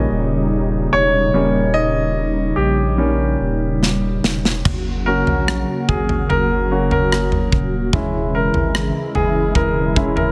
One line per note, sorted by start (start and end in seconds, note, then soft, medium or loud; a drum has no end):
0.00 4.62 A#2 medium
0.00 4.62 C#3 medium
0.00 1.34 G3 soft
0.00 4.61 G3 medium
0.00 1.34 A#3 soft
0.00 1.35 C#4 soft
0.00 4.61 D#4 medium
0.00 4.67 B4 medium
0.00 0.93 C#5 medium
0.00 0.89 D#5 medium
0.11 0.89 D#1 medium
0.93 1.31 E1 medium
0.93 1.77 C#5 medium
1.34 2.53 D#1 medium
1.34 2.53 G3 soft
1.34 2.53 A#3 soft
1.34 2.53 C#4 soft
1.74 2.52 D#5 medium
2.56 3.36 A#1 medium
2.56 4.19 G4 medium
2.98 3.36 G3 soft
2.98 3.36 A#3 soft
2.98 3.36 C#4 soft
3.40 4.20 D#1 medium
3.83 snare soft
4.23 4.62 E1 medium
4.23 snare medium
4.45 snare medium
4.65 5.23 F#1 medium
4.65 7.90 C#3 medium
4.65 7.90 F#3 medium
4.65 7.90 A#3 medium
4.65 7.90 F#4 medium
4.65 kick medium
4.65 floor tom medium
4.65 crash medium
5.06 6.69 A#3 soft
5.06 6.70 C#4 soft
5.06 6.70 F#4 soft
5.06 5.91 A#4 medium
5.27 5.65 A#1 medium
5.27 floor tom medium
5.48 cross-stick loud
5.89 6.27 G#1 medium
5.89 6.27 G#4 medium
5.89 kick medium
5.89 floor tom soft
6.09 floor tom medium
6.29 7.49 F#1 medium
6.29 6.90 A#4 medium
6.29 floor tom medium
6.71 7.08 A#3 soft
6.71 7.08 C#4 soft
6.71 7.08 F#4 soft
6.91 7.49 A#4 medium
6.91 floor tom medium
7.12 cross-stick medium
7.32 floor tom medium
7.52 7.90 D#1 medium
7.52 kick medium
7.93 8.50 E1 medium
7.93 10.32 C#3 medium
7.93 10.32 E3 medium
7.93 10.32 G#3 medium
7.93 9.95 G#3 soft
7.93 9.95 C#4 soft
7.93 10.32 E4 medium
7.93 9.95 E4 soft
7.93 kick medium
7.93 floor tom medium
8.35 9.18 A#4 medium
8.54 8.92 G#1 medium
8.54 floor tom medium
8.75 cross-stick loud
9.15 9.53 F#1 medium
9.15 9.24 G#4 medium
9.15 floor tom soft
9.55 10.32 E1 medium
9.55 10.14 A#4 medium
9.55 kick medium
9.55 floor tom medium
9.96 10.32 G#3 soft
9.96 10.32 C#4 soft
9.96 10.32 E4 soft
9.96 kick medium
10.16 10.32 A#4 medium
10.16 floor tom medium